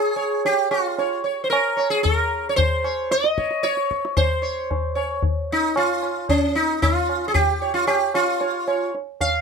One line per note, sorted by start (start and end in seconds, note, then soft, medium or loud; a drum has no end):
0.00 0.45 G#4 medium
0.16 0.41 C#5 soft
0.45 0.71 G4 medium
0.45 tabla tin medium
0.71 1.20 F4 medium
0.71 tabla na medium
0.98 1.23 C#5 soft
0.98 tabla tin medium
1.24 1.43 C#5 soft
1.44 1.49 C5 soft
1.50 1.90 A#4 medium
1.50 tabla na medium
1.77 2.02 C#5 soft
1.77 tabla na medium
1.90 2.03 G#4 medium
2.03 2.49 A#4 medium
2.03 tabla tin medium
2.03 tabla ge medium
2.49 2.56 C#5 medium
2.56 3.12 C5 medium
2.56 tabla tin medium
2.56 tabla ge medium
2.84 3.09 C#5 soft
2.84 tabla na medium
3.11 3.66 D#5 loud
3.11 tabla te medium
3.24 tabla te medium
3.37 3.62 C#5 soft
3.37 tabla ke medium
3.51 tabla te medium
3.63 4.16 C#5 medium
3.63 tabla te medium
3.77 tabla te soft
3.91 tabla ke medium
4.05 tabla te medium
4.17 4.93 C5 medium
4.17 tabla tin medium
4.17 tabla ge medium
4.42 4.68 C#5 soft
4.71 tabla tin medium
4.71 tabla ge medium
4.95 5.21 C#5 soft
4.95 tabla na medium
5.23 tabla tin medium
5.23 tabla ge medium
5.52 5.77 D#4 medium
5.76 6.26 F4 medium
5.76 tabla na medium
6.03 tabla na medium
6.29 6.57 C#4 medium
6.29 tabla tin medium
6.29 tabla ge medium
6.55 6.82 D#4 medium
6.82 7.25 F4 loud
6.82 tabla tin medium
6.82 tabla ge medium
7.09 tabla na medium
7.28 7.34 G#4 medium
7.34 7.73 G4 loud
7.34 tabla tin medium
7.34 tabla ge medium
7.62 7.86 C#5 soft
7.74 7.87 F4 medium
7.87 8.15 G4 medium
7.87 tabla na medium
8.14 8.90 F4 medium
8.14 tabla na medium
8.40 8.65 C#5 soft
8.40 tabla tin medium
8.67 8.92 C#5 soft
8.67 tabla na medium
8.95 tabla tin medium
9.21 9.41 F5 medium
9.21 tabla tin medium
9.21 tabla ge medium